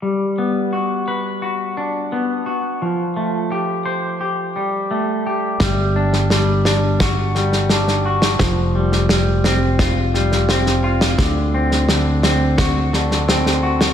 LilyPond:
<<
  \new Staff \with { instrumentName = "Clean electric guitar" } { \time 4/4 \key g \major \tempo 4 = 86 g8 b8 fis'8 b'8 fis'8 d'8 b8 fis'8 | f8 a8 g'8 c''8 g'8 g8 a8 g'8 | g8 d'8 g8 d'8 fis'8 g8 d'8 fis'8 | f8 g8 g8 c'8 f'8 g8 c'8 f'8 |
d8 c'8 d8 c'8 fis'8 d8 c'8 fis'8 | }
  \new Staff \with { instrumentName = "Fingered electric bass" } { \clef bass \time 4/4 \key g \major r1 | r1 | g,,1 | f,,1 |
d,1 | }
  \new DrumStaff \with { instrumentName = "Drums" } \drummode { \time 4/4 r4 r4 r4 r4 | r4 r4 r4 r4 | <bd sn>8. sn16 sn8 sn8 <bd sn>8 sn16 sn16 sn16 sn8 sn16 | <bd sn>8. sn16 sn8 sn8 <bd sn>8 sn16 sn16 sn16 sn8 sn16 |
<bd sn>8. sn16 sn8 sn8 <bd sn>8 sn16 sn16 sn16 sn8 sn16 | }
>>